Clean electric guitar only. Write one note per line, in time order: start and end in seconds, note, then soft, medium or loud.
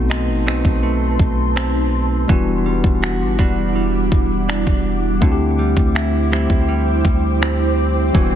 0.00 2.29 B2 medium
0.00 0.45 A3 medium
0.10 0.46 D#4 medium
0.47 0.82 A3 medium
0.47 1.55 C4 medium
0.47 2.37 D#4 medium
0.83 2.37 A3 medium
1.56 2.37 C4 medium
2.29 5.22 E3 medium
2.66 3.39 G3 medium
3.03 3.39 F#4 medium
3.39 3.75 G3 medium
3.39 4.48 D4 medium
3.39 5.30 F#4 medium
3.76 5.59 G3 medium
4.49 5.98 D4 medium
5.22 8.14 D3 medium
5.59 6.31 G3 medium
5.95 6.33 E4 medium
6.32 6.68 G3 medium
6.32 7.41 C4 medium
6.32 8.35 E4 medium
6.69 8.35 G3 medium
7.42 8.22 C4 medium
8.15 8.35 E3 medium